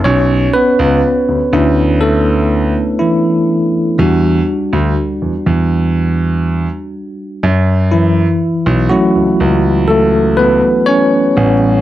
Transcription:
<<
  \new Staff \with { instrumentName = "Tine electric piano" } { \time 4/4 \key fis \phrygian \tempo 4 = 61 << { <cis' cis''>8 <b b'>4. <a a'>4 <e e'>8. r16 | r1 | <e e'>4 <fis fis'>4 <a a'>8 <b b'>8 <cis' cis''>8. r16 | } \\ { r4. <a cis' d' e'>2~ <a cis' d' e'>8 | <g d' fis'>4. r2 r8 | r4 <a cis' e'>4. r4 <g b cis'>8 | } >> }
  \new Staff \with { instrumentName = "Grand piano" } { \clef bass \time 4/4 \key fis \phrygian b,,8 r16 cis,16 r16 d,16 d,4~ d,16 r4 r16 | e,8 r16 d,16 r16 e,16 e,4~ e,16 r8. fis,8~ | fis,8 r16 b,,16 r16 cis,16 cis,4~ cis,16 r8. a,,8 | }
>>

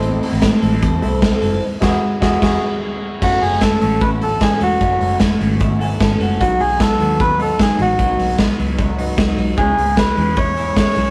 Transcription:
<<
  \new Staff \with { instrumentName = "Melodica" } { \time 4/4 \key fis \dorian \tempo 4 = 151 r1 | r1 | fis'8 gis'8 a'8 a'8 b'8 a'8 gis'8 fis'8~ | fis'4 r2. |
fis'8 gis'8 a'4 b'8 a'8 gis'8 fis'8~ | fis'4 r2. | gis'4 b'4 cis''4 cis''4 | }
  \new Staff \with { instrumentName = "Upright piano" } { \time 4/4 \key fis \dorian << { r1 | r1 | r1 | r2 r8 gis''8 a''8 fis''8 |
r1 | r1 | r1 | } \\ { <c' e' a'>2~ <c' e' a'>8 <c' e' a'>4. | r8 <e' fis' gis'>8 r8 <e' fis' gis'>8 <e' fis' gis'>8 r4. | <e' fis' a'>1~ | <e' fis' a'>1 |
<dis' fis' b'>1~ | <dis' fis' b'>2~ <dis' fis' b'>8 <dis' fis' b'>4. | <cis' e' gis'>1 | } >> }
  \new Staff \with { instrumentName = "Clean electric guitar" } { \time 4/4 \key fis \dorian c'8 c'8 e'8 a'8 c'8 e'8 c'8 a'8 | r1 | cis'8 cis'8 e'8 cis'8 e'8 a'8 cis'8 a'8 | cis'8 cis'8 e'8 cis'8 e'8 a'8 cis'8 a'8 |
fis8 fis8 b8 fis8 b8 dis'8 fis8 dis'8 | fis8 fis8 b8 fis8 b8 dis'8 fis8 dis'8 | gis8 gis8 cis'8 gis8 cis'8 e'8 gis8 e'8 | }
  \new Staff \with { instrumentName = "Clean electric guitar" } { \time 4/4 \key fis \dorian <a, e a c' e' a'>8 <a, e a c' e' a'>8. <a c' e' a'>8 <a c' e' a'>8. <a c' e' a'>8. <a, e a c' e' a'>8. | r8 <e gis b e' fis'>8 r8 <b e' fis'>8 <b e' fis'>8 r4. | <fis, cis e a cis' fis'>4 <e a cis' fis'>8 <e a cis' fis'>4 <e a cis' fis'>8 <e a cis' fis'>8 <e a cis' fis'>8 | <fis, cis e a cis' fis'>4 <e a cis' fis'>8 <e a cis' fis'>4 <e a cis' fis'>8 <e a cis' fis'>8 <e a cis' fis'>8 |
<b, fis b dis' fis'>4 <fis b dis' fis'>8 <fis b dis' fis'>4 <fis b dis' fis'>8 <fis b dis' fis'>8 <fis b dis' fis'>8 | <b, fis b dis' fis'>4 <fis b dis' fis'>8 <fis b dis' fis'>4 <fis b dis' fis'>8 <fis b dis' fis'>8 <fis b dis' fis'>8 | <cis e cis' e' gis'>4 <e cis' e' gis'>8 <e cis' e' gis'>4 <e cis' e' gis'>8 <e cis' e' gis'>8 <e cis' e' gis'>8 | }
  \new Staff \with { instrumentName = "Fingered electric bass" } { \clef bass \time 4/4 \key fis \dorian a,,8 r16 a,,8 r16 a,,8 e,8 c,4 fis,,8 | r8 e,,8 r8 e,,8 e,,8 r4. | fis,,8 fis,,4 a,,2 e,,8 | fis,,8 fis,,4 gis,,4. gis,,8 fis,,8 |
b,,8 b,,4 dis,2 a,,8 | b,,8 b,,4 cis,4. cis,8 b,,8 | cis,8 cis,4 e,2 b,,8 | }
  \new DrumStaff \with { instrumentName = "Drums" } \drummode { \time 4/4 hh8 hho8 <hh bd sn>8 hho8 <hh bd>8 hho8 <hh bd sn>8 hho8 | r8 <cymc bd sn>8 r8 <bd sn>8 <cymc bd sn>4 r4 | <cymc bd>8 hho8 <hh bd sn>8 hho8 <hh bd>8 hho8 <hh bd sn>8 hho8 | <hh bd>8 hho8 <hh bd sn>8 hho8 <hh bd>8 hho8 <hh bd sn>8 hho8 |
<hh bd>8 hho8 <hh bd sn>8 hho8 <hh bd>8 hho8 <hh bd sn>8 hho8 | <hh bd>8 hho8 <hh bd sn>8 hho8 <hh bd>8 hho8 <hh bd sn>8 hho8 | <hh bd>8 hho8 <hh bd sn>8 hho8 <hh bd>8 hho8 <hh bd sn>8 hho8 | }
>>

